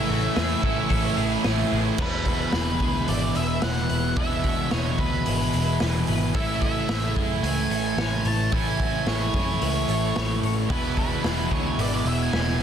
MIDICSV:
0, 0, Header, 1, 9, 480
1, 0, Start_track
1, 0, Tempo, 543478
1, 1762, Time_signature, 4, 2, 24, 8
1, 11153, End_track
2, 0, Start_track
2, 0, Title_t, "Lead electric guitar"
2, 0, Program_c, 0, 29
2, 0, Note_on_c, 0, 76, 83
2, 1233, Note_off_c, 0, 76, 0
2, 1786, Note_on_c, 0, 71, 85
2, 1998, Note_off_c, 0, 71, 0
2, 2009, Note_on_c, 0, 71, 81
2, 2726, Note_on_c, 0, 74, 89
2, 2747, Note_off_c, 0, 71, 0
2, 2969, Note_off_c, 0, 74, 0
2, 2972, Note_on_c, 0, 76, 92
2, 3205, Note_on_c, 0, 78, 104
2, 3215, Note_off_c, 0, 76, 0
2, 3680, Note_on_c, 0, 76, 93
2, 3699, Note_off_c, 0, 78, 0
2, 4163, Note_off_c, 0, 76, 0
2, 4166, Note_on_c, 0, 73, 79
2, 4407, Note_on_c, 0, 71, 75
2, 4413, Note_off_c, 0, 73, 0
2, 5092, Note_off_c, 0, 71, 0
2, 5615, Note_on_c, 0, 76, 98
2, 5836, Note_off_c, 0, 76, 0
2, 5847, Note_on_c, 0, 76, 93
2, 6294, Note_off_c, 0, 76, 0
2, 6565, Note_on_c, 0, 80, 92
2, 6801, Note_off_c, 0, 80, 0
2, 6812, Note_on_c, 0, 80, 102
2, 7304, Note_off_c, 0, 80, 0
2, 7310, Note_on_c, 0, 81, 94
2, 7532, Note_off_c, 0, 81, 0
2, 7536, Note_on_c, 0, 80, 94
2, 8017, Note_on_c, 0, 73, 65
2, 8026, Note_off_c, 0, 80, 0
2, 9178, Note_off_c, 0, 73, 0
2, 9466, Note_on_c, 0, 71, 74
2, 9689, Note_off_c, 0, 71, 0
2, 9699, Note_on_c, 0, 71, 72
2, 10180, Note_on_c, 0, 73, 74
2, 10188, Note_off_c, 0, 71, 0
2, 10421, Note_off_c, 0, 73, 0
2, 10433, Note_on_c, 0, 74, 94
2, 10667, Note_off_c, 0, 74, 0
2, 10672, Note_on_c, 0, 76, 94
2, 10783, Note_off_c, 0, 76, 0
2, 10797, Note_on_c, 0, 80, 85
2, 11153, Note_off_c, 0, 80, 0
2, 11153, End_track
3, 0, Start_track
3, 0, Title_t, "Clean electric guitar"
3, 0, Program_c, 1, 27
3, 78, Note_on_c, 1, 66, 81
3, 318, Note_on_c, 1, 68, 81
3, 321, Note_off_c, 1, 66, 0
3, 550, Note_off_c, 1, 68, 0
3, 554, Note_on_c, 1, 69, 75
3, 777, Note_off_c, 1, 69, 0
3, 788, Note_on_c, 1, 69, 85
3, 1029, Note_off_c, 1, 69, 0
3, 1033, Note_on_c, 1, 68, 73
3, 1265, Note_off_c, 1, 68, 0
3, 1276, Note_on_c, 1, 68, 87
3, 1508, Note_off_c, 1, 68, 0
3, 1519, Note_on_c, 1, 68, 80
3, 1755, Note_off_c, 1, 68, 0
3, 1759, Note_on_c, 1, 71, 88
3, 1998, Note_on_c, 1, 66, 74
3, 2240, Note_off_c, 1, 66, 0
3, 2244, Note_on_c, 1, 68, 74
3, 2482, Note_off_c, 1, 68, 0
3, 2482, Note_on_c, 1, 68, 64
3, 2724, Note_off_c, 1, 71, 0
3, 2724, Note_on_c, 1, 71, 73
3, 2954, Note_off_c, 1, 71, 0
3, 2957, Note_off_c, 1, 68, 0
3, 2957, Note_on_c, 1, 68, 75
3, 3204, Note_on_c, 1, 71, 73
3, 3429, Note_off_c, 1, 71, 0
3, 3440, Note_on_c, 1, 71, 72
3, 3678, Note_off_c, 1, 71, 0
3, 3689, Note_on_c, 1, 71, 83
3, 3926, Note_off_c, 1, 71, 0
3, 3928, Note_off_c, 1, 68, 0
3, 3931, Note_on_c, 1, 66, 76
3, 4168, Note_off_c, 1, 66, 0
3, 4174, Note_on_c, 1, 68, 76
3, 4410, Note_off_c, 1, 68, 0
3, 4410, Note_on_c, 1, 68, 64
3, 4654, Note_on_c, 1, 71, 67
3, 4888, Note_off_c, 1, 71, 0
3, 4891, Note_off_c, 1, 68, 0
3, 4891, Note_on_c, 1, 68, 70
3, 5127, Note_on_c, 1, 71, 76
3, 5360, Note_off_c, 1, 71, 0
3, 5370, Note_on_c, 1, 71, 73
3, 5606, Note_off_c, 1, 68, 0
3, 5608, Note_off_c, 1, 71, 0
3, 5609, Note_on_c, 1, 69, 88
3, 5845, Note_on_c, 1, 66, 73
3, 6083, Note_off_c, 1, 69, 0
3, 6086, Note_off_c, 1, 66, 0
3, 6087, Note_on_c, 1, 68, 78
3, 6325, Note_off_c, 1, 68, 0
3, 6325, Note_on_c, 1, 68, 70
3, 6566, Note_on_c, 1, 71, 69
3, 6807, Note_off_c, 1, 71, 0
3, 6813, Note_on_c, 1, 69, 71
3, 6840, Note_off_c, 1, 68, 0
3, 7050, Note_on_c, 1, 73, 76
3, 7051, Note_off_c, 1, 69, 0
3, 7281, Note_off_c, 1, 73, 0
3, 7292, Note_on_c, 1, 73, 75
3, 7530, Note_off_c, 1, 73, 0
3, 7539, Note_on_c, 1, 69, 85
3, 7773, Note_off_c, 1, 69, 0
3, 7779, Note_on_c, 1, 66, 68
3, 8010, Note_off_c, 1, 66, 0
3, 8014, Note_on_c, 1, 68, 78
3, 8260, Note_off_c, 1, 68, 0
3, 8260, Note_on_c, 1, 68, 65
3, 8493, Note_on_c, 1, 71, 73
3, 8731, Note_off_c, 1, 71, 0
3, 8736, Note_on_c, 1, 69, 75
3, 8762, Note_off_c, 1, 68, 0
3, 8972, Note_off_c, 1, 69, 0
3, 8981, Note_on_c, 1, 73, 75
3, 9208, Note_off_c, 1, 73, 0
3, 9219, Note_on_c, 1, 73, 78
3, 9452, Note_off_c, 1, 73, 0
3, 9455, Note_on_c, 1, 71, 86
3, 9701, Note_on_c, 1, 66, 66
3, 9930, Note_off_c, 1, 66, 0
3, 9933, Note_on_c, 1, 68, 72
3, 10174, Note_off_c, 1, 68, 0
3, 10174, Note_on_c, 1, 68, 72
3, 10416, Note_off_c, 1, 71, 0
3, 10416, Note_on_c, 1, 71, 77
3, 10651, Note_off_c, 1, 71, 0
3, 10655, Note_off_c, 1, 68, 0
3, 10655, Note_on_c, 1, 68, 74
3, 10890, Note_off_c, 1, 68, 0
3, 10893, Note_on_c, 1, 71, 77
3, 11122, Note_off_c, 1, 71, 0
3, 11153, End_track
4, 0, Start_track
4, 0, Title_t, "String machine"
4, 0, Program_c, 2, 50
4, 0, Note_on_c, 2, 57, 79
4, 0, Note_on_c, 2, 68, 73
4, 0, Note_on_c, 2, 73, 80
4, 1727, Note_off_c, 2, 73, 0
4, 1730, Note_off_c, 2, 57, 0
4, 1731, Note_off_c, 2, 68, 0
4, 11153, End_track
5, 0, Start_track
5, 0, Title_t, "Overdriven electric guitar"
5, 0, Program_c, 3, 29
5, 0, Note_on_c, 3, 45, 98
5, 0, Note_on_c, 3, 52, 99
5, 0, Note_on_c, 3, 57, 103
5, 0, Note_on_c, 3, 61, 94
5, 0, Note_on_c, 3, 64, 98
5, 536, Note_off_c, 3, 64, 0
5, 544, Note_off_c, 3, 45, 0
5, 545, Note_off_c, 3, 61, 0
5, 547, Note_off_c, 3, 52, 0
5, 547, Note_on_c, 3, 64, 88
5, 550, Note_off_c, 3, 57, 0
5, 556, Note_on_c, 3, 61, 80
5, 563, Note_on_c, 3, 57, 87
5, 568, Note_on_c, 3, 52, 70
5, 572, Note_on_c, 3, 45, 70
5, 1260, Note_off_c, 3, 64, 0
5, 1262, Note_off_c, 3, 45, 0
5, 1264, Note_off_c, 3, 61, 0
5, 1268, Note_off_c, 3, 57, 0
5, 1270, Note_off_c, 3, 52, 0
5, 1273, Note_on_c, 3, 45, 82
5, 1280, Note_on_c, 3, 52, 80
5, 1286, Note_on_c, 3, 57, 83
5, 1293, Note_on_c, 3, 61, 79
5, 1296, Note_on_c, 3, 64, 84
5, 1743, Note_off_c, 3, 45, 0
5, 1747, Note_off_c, 3, 52, 0
5, 1750, Note_off_c, 3, 57, 0
5, 1753, Note_off_c, 3, 61, 0
5, 1755, Note_off_c, 3, 64, 0
5, 1755, Note_on_c, 3, 40, 79
5, 1759, Note_on_c, 3, 47, 92
5, 1766, Note_on_c, 3, 52, 88
5, 1773, Note_on_c, 3, 56, 90
5, 1773, Note_on_c, 3, 62, 85
5, 1775, Note_on_c, 3, 64, 90
5, 3665, Note_off_c, 3, 40, 0
5, 3668, Note_off_c, 3, 47, 0
5, 3675, Note_off_c, 3, 62, 0
5, 3679, Note_on_c, 3, 40, 85
5, 3686, Note_on_c, 3, 47, 89
5, 3689, Note_off_c, 3, 52, 0
5, 3690, Note_off_c, 3, 56, 0
5, 3692, Note_on_c, 3, 52, 83
5, 3694, Note_on_c, 3, 56, 84
5, 3700, Note_off_c, 3, 64, 0
5, 3701, Note_on_c, 3, 62, 95
5, 3703, Note_on_c, 3, 64, 88
5, 5589, Note_off_c, 3, 40, 0
5, 5593, Note_off_c, 3, 47, 0
5, 5600, Note_off_c, 3, 62, 0
5, 5600, Note_on_c, 3, 45, 79
5, 5605, Note_off_c, 3, 52, 0
5, 5608, Note_on_c, 3, 52, 89
5, 5613, Note_off_c, 3, 56, 0
5, 5616, Note_on_c, 3, 57, 94
5, 5617, Note_off_c, 3, 64, 0
5, 5619, Note_on_c, 3, 61, 87
5, 5621, Note_on_c, 3, 64, 101
5, 7510, Note_off_c, 3, 45, 0
5, 7519, Note_off_c, 3, 57, 0
5, 7520, Note_off_c, 3, 61, 0
5, 7521, Note_on_c, 3, 45, 80
5, 7524, Note_off_c, 3, 52, 0
5, 7527, Note_on_c, 3, 52, 88
5, 7531, Note_on_c, 3, 57, 93
5, 7538, Note_off_c, 3, 64, 0
5, 7539, Note_on_c, 3, 61, 90
5, 7542, Note_on_c, 3, 64, 102
5, 9431, Note_off_c, 3, 45, 0
5, 9435, Note_off_c, 3, 57, 0
5, 9439, Note_off_c, 3, 61, 0
5, 9442, Note_on_c, 3, 40, 82
5, 9452, Note_off_c, 3, 52, 0
5, 9452, Note_on_c, 3, 47, 82
5, 9456, Note_on_c, 3, 52, 83
5, 9457, Note_on_c, 3, 56, 98
5, 9463, Note_on_c, 3, 62, 92
5, 9464, Note_off_c, 3, 64, 0
5, 9467, Note_on_c, 3, 64, 88
5, 11153, Note_off_c, 3, 40, 0
5, 11153, Note_off_c, 3, 47, 0
5, 11153, Note_off_c, 3, 52, 0
5, 11153, Note_off_c, 3, 56, 0
5, 11153, Note_off_c, 3, 62, 0
5, 11153, Note_off_c, 3, 64, 0
5, 11153, End_track
6, 0, Start_track
6, 0, Title_t, "Distorted electric guitar"
6, 0, Program_c, 4, 30
6, 2718, Note_on_c, 4, 40, 69
6, 2731, Note_on_c, 4, 47, 77
6, 2735, Note_on_c, 4, 52, 82
6, 3667, Note_off_c, 4, 40, 0
6, 3673, Note_off_c, 4, 47, 0
6, 3699, Note_off_c, 4, 52, 0
6, 4645, Note_on_c, 4, 40, 70
6, 4657, Note_on_c, 4, 47, 70
6, 4661, Note_on_c, 4, 52, 77
6, 5592, Note_off_c, 4, 40, 0
6, 5598, Note_off_c, 4, 47, 0
6, 5613, Note_off_c, 4, 52, 0
6, 6562, Note_on_c, 4, 45, 72
6, 6573, Note_on_c, 4, 52, 75
6, 6584, Note_on_c, 4, 57, 78
6, 7511, Note_off_c, 4, 45, 0
6, 7522, Note_off_c, 4, 57, 0
6, 7530, Note_off_c, 4, 52, 0
6, 8486, Note_on_c, 4, 45, 80
6, 8496, Note_on_c, 4, 52, 83
6, 8505, Note_on_c, 4, 57, 80
6, 9433, Note_off_c, 4, 45, 0
6, 9442, Note_off_c, 4, 57, 0
6, 9460, Note_off_c, 4, 52, 0
6, 10399, Note_on_c, 4, 40, 74
6, 10408, Note_on_c, 4, 47, 78
6, 10418, Note_on_c, 4, 52, 75
6, 11153, Note_off_c, 4, 40, 0
6, 11153, Note_off_c, 4, 47, 0
6, 11153, Note_off_c, 4, 52, 0
6, 11153, End_track
7, 0, Start_track
7, 0, Title_t, "Overdriven electric guitar"
7, 0, Program_c, 5, 29
7, 0, Note_on_c, 5, 45, 104
7, 0, Note_on_c, 5, 52, 96
7, 0, Note_on_c, 5, 57, 99
7, 1739, Note_off_c, 5, 45, 0
7, 1749, Note_off_c, 5, 52, 0
7, 1756, Note_off_c, 5, 57, 0
7, 9445, Note_on_c, 5, 40, 79
7, 9452, Note_on_c, 5, 47, 91
7, 9458, Note_on_c, 5, 52, 100
7, 9680, Note_off_c, 5, 40, 0
7, 9680, Note_off_c, 5, 47, 0
7, 9683, Note_on_c, 5, 40, 77
7, 9690, Note_on_c, 5, 47, 77
7, 9691, Note_off_c, 5, 52, 0
7, 9695, Note_on_c, 5, 52, 83
7, 9915, Note_off_c, 5, 47, 0
7, 9918, Note_off_c, 5, 40, 0
7, 9921, Note_on_c, 5, 40, 67
7, 9926, Note_on_c, 5, 47, 78
7, 9930, Note_off_c, 5, 52, 0
7, 9933, Note_on_c, 5, 52, 84
7, 10149, Note_off_c, 5, 47, 0
7, 10152, Note_off_c, 5, 40, 0
7, 10155, Note_on_c, 5, 40, 90
7, 10160, Note_on_c, 5, 47, 91
7, 10161, Note_off_c, 5, 52, 0
7, 10165, Note_on_c, 5, 52, 99
7, 10389, Note_off_c, 5, 40, 0
7, 10391, Note_off_c, 5, 47, 0
7, 10399, Note_on_c, 5, 40, 82
7, 10402, Note_on_c, 5, 47, 83
7, 10405, Note_off_c, 5, 52, 0
7, 10409, Note_on_c, 5, 52, 90
7, 10620, Note_off_c, 5, 40, 0
7, 10630, Note_off_c, 5, 47, 0
7, 10631, Note_on_c, 5, 40, 84
7, 10640, Note_on_c, 5, 47, 104
7, 10641, Note_off_c, 5, 52, 0
7, 10644, Note_on_c, 5, 52, 105
7, 10865, Note_off_c, 5, 40, 0
7, 10871, Note_off_c, 5, 47, 0
7, 10875, Note_on_c, 5, 40, 80
7, 10881, Note_on_c, 5, 47, 80
7, 10887, Note_off_c, 5, 52, 0
7, 10891, Note_on_c, 5, 52, 80
7, 11109, Note_off_c, 5, 40, 0
7, 11114, Note_off_c, 5, 47, 0
7, 11120, Note_on_c, 5, 40, 76
7, 11124, Note_on_c, 5, 47, 85
7, 11128, Note_off_c, 5, 52, 0
7, 11153, Note_off_c, 5, 40, 0
7, 11153, Note_off_c, 5, 47, 0
7, 11153, End_track
8, 0, Start_track
8, 0, Title_t, "Picked electric bass"
8, 0, Program_c, 6, 34
8, 89, Note_on_c, 6, 33, 83
8, 242, Note_off_c, 6, 33, 0
8, 322, Note_on_c, 6, 40, 86
8, 478, Note_off_c, 6, 40, 0
8, 562, Note_on_c, 6, 33, 91
8, 717, Note_off_c, 6, 33, 0
8, 797, Note_on_c, 6, 33, 99
8, 954, Note_off_c, 6, 33, 0
8, 1037, Note_on_c, 6, 33, 97
8, 1194, Note_off_c, 6, 33, 0
8, 1281, Note_on_c, 6, 33, 85
8, 1436, Note_off_c, 6, 33, 0
8, 1522, Note_on_c, 6, 33, 91
8, 1677, Note_off_c, 6, 33, 0
8, 1755, Note_on_c, 6, 28, 94
8, 2158, Note_off_c, 6, 28, 0
8, 2236, Note_on_c, 6, 28, 77
8, 2438, Note_off_c, 6, 28, 0
8, 2474, Note_on_c, 6, 38, 82
8, 2677, Note_off_c, 6, 38, 0
8, 2725, Note_on_c, 6, 32, 81
8, 2924, Note_off_c, 6, 32, 0
8, 2966, Note_on_c, 6, 28, 78
8, 3165, Note_off_c, 6, 28, 0
8, 3208, Note_on_c, 6, 28, 83
8, 3406, Note_off_c, 6, 28, 0
8, 3448, Note_on_c, 6, 28, 88
8, 3646, Note_off_c, 6, 28, 0
8, 3680, Note_on_c, 6, 28, 83
8, 4082, Note_off_c, 6, 28, 0
8, 4171, Note_on_c, 6, 28, 85
8, 4368, Note_off_c, 6, 28, 0
8, 4405, Note_on_c, 6, 38, 89
8, 4605, Note_off_c, 6, 38, 0
8, 4657, Note_on_c, 6, 32, 87
8, 4852, Note_off_c, 6, 32, 0
8, 4894, Note_on_c, 6, 28, 84
8, 5091, Note_off_c, 6, 28, 0
8, 5132, Note_on_c, 6, 28, 86
8, 5329, Note_off_c, 6, 28, 0
8, 5373, Note_on_c, 6, 32, 84
8, 5570, Note_off_c, 6, 32, 0
8, 5608, Note_on_c, 6, 33, 89
8, 6007, Note_off_c, 6, 33, 0
8, 6086, Note_on_c, 6, 33, 80
8, 6287, Note_off_c, 6, 33, 0
8, 6328, Note_on_c, 6, 42, 78
8, 6527, Note_off_c, 6, 42, 0
8, 6562, Note_on_c, 6, 37, 92
8, 6764, Note_off_c, 6, 37, 0
8, 6798, Note_on_c, 6, 33, 83
8, 7002, Note_off_c, 6, 33, 0
8, 7042, Note_on_c, 6, 33, 80
8, 7244, Note_off_c, 6, 33, 0
8, 7287, Note_on_c, 6, 33, 81
8, 7487, Note_off_c, 6, 33, 0
8, 7529, Note_on_c, 6, 33, 90
8, 7928, Note_off_c, 6, 33, 0
8, 8005, Note_on_c, 6, 33, 84
8, 8206, Note_off_c, 6, 33, 0
8, 8252, Note_on_c, 6, 42, 81
8, 8450, Note_off_c, 6, 42, 0
8, 8491, Note_on_c, 6, 37, 89
8, 8690, Note_off_c, 6, 37, 0
8, 8729, Note_on_c, 6, 33, 78
8, 8929, Note_off_c, 6, 33, 0
8, 8976, Note_on_c, 6, 33, 81
8, 9173, Note_off_c, 6, 33, 0
8, 9211, Note_on_c, 6, 33, 85
8, 9410, Note_off_c, 6, 33, 0
8, 9453, Note_on_c, 6, 28, 89
8, 9851, Note_off_c, 6, 28, 0
8, 9929, Note_on_c, 6, 28, 82
8, 10128, Note_off_c, 6, 28, 0
8, 10170, Note_on_c, 6, 38, 80
8, 10369, Note_off_c, 6, 38, 0
8, 10405, Note_on_c, 6, 32, 88
8, 10606, Note_off_c, 6, 32, 0
8, 10645, Note_on_c, 6, 28, 85
8, 10846, Note_off_c, 6, 28, 0
8, 10890, Note_on_c, 6, 28, 78
8, 11089, Note_off_c, 6, 28, 0
8, 11121, Note_on_c, 6, 28, 81
8, 11153, Note_off_c, 6, 28, 0
8, 11153, End_track
9, 0, Start_track
9, 0, Title_t, "Drums"
9, 321, Note_on_c, 9, 46, 64
9, 323, Note_on_c, 9, 38, 119
9, 409, Note_off_c, 9, 46, 0
9, 411, Note_off_c, 9, 38, 0
9, 559, Note_on_c, 9, 36, 79
9, 647, Note_off_c, 9, 36, 0
9, 797, Note_on_c, 9, 36, 85
9, 798, Note_on_c, 9, 46, 63
9, 886, Note_off_c, 9, 36, 0
9, 886, Note_off_c, 9, 46, 0
9, 1274, Note_on_c, 9, 46, 59
9, 1275, Note_on_c, 9, 38, 115
9, 1362, Note_off_c, 9, 46, 0
9, 1364, Note_off_c, 9, 38, 0
9, 1750, Note_on_c, 9, 49, 102
9, 1753, Note_on_c, 9, 36, 101
9, 1838, Note_off_c, 9, 49, 0
9, 1842, Note_off_c, 9, 36, 0
9, 1988, Note_on_c, 9, 46, 58
9, 1994, Note_on_c, 9, 36, 75
9, 2077, Note_off_c, 9, 46, 0
9, 2082, Note_off_c, 9, 36, 0
9, 2229, Note_on_c, 9, 46, 75
9, 2231, Note_on_c, 9, 38, 110
9, 2318, Note_off_c, 9, 46, 0
9, 2319, Note_off_c, 9, 38, 0
9, 2472, Note_on_c, 9, 46, 49
9, 2475, Note_on_c, 9, 36, 74
9, 2561, Note_off_c, 9, 46, 0
9, 2563, Note_off_c, 9, 36, 0
9, 2718, Note_on_c, 9, 46, 70
9, 2807, Note_off_c, 9, 46, 0
9, 2957, Note_on_c, 9, 46, 47
9, 3045, Note_off_c, 9, 46, 0
9, 3195, Note_on_c, 9, 46, 68
9, 3197, Note_on_c, 9, 38, 110
9, 3283, Note_off_c, 9, 46, 0
9, 3285, Note_off_c, 9, 38, 0
9, 3319, Note_on_c, 9, 38, 28
9, 3407, Note_off_c, 9, 38, 0
9, 3440, Note_on_c, 9, 46, 50
9, 3528, Note_off_c, 9, 46, 0
9, 3677, Note_on_c, 9, 46, 69
9, 3681, Note_on_c, 9, 36, 115
9, 3765, Note_off_c, 9, 46, 0
9, 3769, Note_off_c, 9, 36, 0
9, 3920, Note_on_c, 9, 46, 52
9, 3922, Note_on_c, 9, 36, 79
9, 4009, Note_off_c, 9, 46, 0
9, 4011, Note_off_c, 9, 36, 0
9, 4161, Note_on_c, 9, 46, 65
9, 4163, Note_on_c, 9, 38, 103
9, 4250, Note_off_c, 9, 46, 0
9, 4251, Note_off_c, 9, 38, 0
9, 4400, Note_on_c, 9, 46, 45
9, 4404, Note_on_c, 9, 36, 77
9, 4488, Note_off_c, 9, 46, 0
9, 4492, Note_off_c, 9, 36, 0
9, 4644, Note_on_c, 9, 46, 71
9, 4733, Note_off_c, 9, 46, 0
9, 4885, Note_on_c, 9, 46, 52
9, 4973, Note_off_c, 9, 46, 0
9, 5124, Note_on_c, 9, 46, 75
9, 5126, Note_on_c, 9, 38, 100
9, 5212, Note_off_c, 9, 46, 0
9, 5214, Note_off_c, 9, 38, 0
9, 5362, Note_on_c, 9, 46, 53
9, 5450, Note_off_c, 9, 46, 0
9, 5604, Note_on_c, 9, 46, 79
9, 5606, Note_on_c, 9, 36, 106
9, 5692, Note_off_c, 9, 46, 0
9, 5695, Note_off_c, 9, 36, 0
9, 5841, Note_on_c, 9, 46, 52
9, 5846, Note_on_c, 9, 36, 81
9, 5929, Note_off_c, 9, 46, 0
9, 5934, Note_off_c, 9, 36, 0
9, 6083, Note_on_c, 9, 46, 77
9, 6085, Note_on_c, 9, 38, 104
9, 6172, Note_off_c, 9, 46, 0
9, 6173, Note_off_c, 9, 38, 0
9, 6327, Note_on_c, 9, 36, 73
9, 6327, Note_on_c, 9, 46, 50
9, 6415, Note_off_c, 9, 36, 0
9, 6415, Note_off_c, 9, 46, 0
9, 6570, Note_on_c, 9, 46, 73
9, 6658, Note_off_c, 9, 46, 0
9, 6811, Note_on_c, 9, 46, 51
9, 6900, Note_off_c, 9, 46, 0
9, 7050, Note_on_c, 9, 46, 72
9, 7051, Note_on_c, 9, 38, 103
9, 7138, Note_off_c, 9, 46, 0
9, 7140, Note_off_c, 9, 38, 0
9, 7287, Note_on_c, 9, 46, 55
9, 7375, Note_off_c, 9, 46, 0
9, 7526, Note_on_c, 9, 46, 73
9, 7529, Note_on_c, 9, 36, 111
9, 7614, Note_off_c, 9, 46, 0
9, 7617, Note_off_c, 9, 36, 0
9, 7769, Note_on_c, 9, 36, 80
9, 7770, Note_on_c, 9, 46, 53
9, 7857, Note_off_c, 9, 36, 0
9, 7858, Note_off_c, 9, 46, 0
9, 8007, Note_on_c, 9, 46, 73
9, 8009, Note_on_c, 9, 38, 107
9, 8095, Note_off_c, 9, 46, 0
9, 8097, Note_off_c, 9, 38, 0
9, 8244, Note_on_c, 9, 46, 44
9, 8249, Note_on_c, 9, 36, 75
9, 8332, Note_off_c, 9, 46, 0
9, 8338, Note_off_c, 9, 36, 0
9, 8493, Note_on_c, 9, 46, 70
9, 8581, Note_off_c, 9, 46, 0
9, 8732, Note_on_c, 9, 46, 46
9, 8820, Note_off_c, 9, 46, 0
9, 8973, Note_on_c, 9, 46, 66
9, 8975, Note_on_c, 9, 38, 101
9, 9061, Note_off_c, 9, 46, 0
9, 9063, Note_off_c, 9, 38, 0
9, 9214, Note_on_c, 9, 46, 50
9, 9302, Note_off_c, 9, 46, 0
9, 9451, Note_on_c, 9, 36, 113
9, 9451, Note_on_c, 9, 46, 69
9, 9539, Note_off_c, 9, 36, 0
9, 9540, Note_off_c, 9, 46, 0
9, 9690, Note_on_c, 9, 36, 80
9, 9692, Note_on_c, 9, 46, 54
9, 9778, Note_off_c, 9, 36, 0
9, 9780, Note_off_c, 9, 46, 0
9, 9929, Note_on_c, 9, 46, 76
9, 9931, Note_on_c, 9, 38, 105
9, 10017, Note_off_c, 9, 46, 0
9, 10019, Note_off_c, 9, 38, 0
9, 10168, Note_on_c, 9, 46, 45
9, 10169, Note_on_c, 9, 36, 68
9, 10256, Note_off_c, 9, 46, 0
9, 10257, Note_off_c, 9, 36, 0
9, 10413, Note_on_c, 9, 46, 81
9, 10501, Note_off_c, 9, 46, 0
9, 10648, Note_on_c, 9, 46, 57
9, 10736, Note_off_c, 9, 46, 0
9, 10892, Note_on_c, 9, 46, 74
9, 10894, Note_on_c, 9, 38, 101
9, 10980, Note_off_c, 9, 46, 0
9, 10982, Note_off_c, 9, 38, 0
9, 11016, Note_on_c, 9, 38, 31
9, 11104, Note_off_c, 9, 38, 0
9, 11153, End_track
0, 0, End_of_file